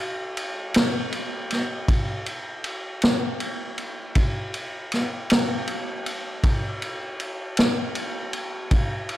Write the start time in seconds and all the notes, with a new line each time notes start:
0.37 ride
0.74 snare, ride
1.12 ride
1.51 snare, ride
1.88 kick, ride
2.26 ride
2.64 ride
3.02 snare, ride
3.40 ride
3.78 ride
4.15 kick, ride
4.54 ride
4.92 snare, ride
5.30 snare, ride
5.68 ride
6.06 ride
6.43 kick, ride
6.82 ride
7.20 ride
7.57 snare, ride
7.95 ride
8.33 ride
8.71 kick, ride
9.09 ride